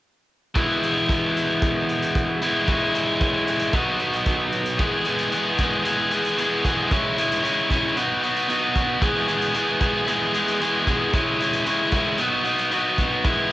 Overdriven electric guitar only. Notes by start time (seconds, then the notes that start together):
0.54 E2 B2 E3 G#3 B3 E4
2.42 E2 B2 E3 G#3 B3 E4
2.68 C#3 E3 G#3 C#4 E4
3.73 B2 F#3 B3 D#4 F#4
4.78 E2 B2 E3 G#3 B3 G#4
5.06 E3 G#3 B3 G#4
5.32 E2 B2 E3 G#3 B3 G#4
5.58 E3 G#3 B3 G#4
5.84 E3 G#3 B3 G#4
6.12 E3 G#3 B3 G#4
6.37 E2 B2 E3 G#3 B3 G#4
6.65 E3 G#3 B3 G#4
6.92 C#3 E3 G#3 C#4 E4
7.17 G#3 C#4 E4
7.42 C#3 E3 G#3 C#4 E4
7.70 G#3 C#4 E4
7.95 B2 F#3 B3 D#4 F#4
8.22 B3 D#4 F#4
8.48 B2 F#3 B3 D#4 F#4
8.74 B3 D#4 F#4
9.01 E2 B2 E3 G#3 B3 G#4
9.28 E3 G#3 B3 G#4
9.54 E2 B2 E3 G#3 B3 G#4
9.80 E3 G#3 B3 G#4
10.07 E3 G#3 B3 G#4
10.33 E3 G#3 B3 G#4
10.60 E2 B2 E3 G#3 B3 G#4
10.87 E3 G#3 B3 G#4
11.13 C#3 E3 G#3 C#4 E4
11.40 G#3 C#4 E4
11.65 C#3 E3 G#3 C#4 E4
11.92 G#3 C#4 E4
12.19 B2 F#3 B3 D#4 F#4
12.44 B3 D#4 F#4
12.71 B2 F#3 B3 D#4 F#4
12.97 B3 D#4 F#4
13.24 E2 B2 E3 G#3 B3 E4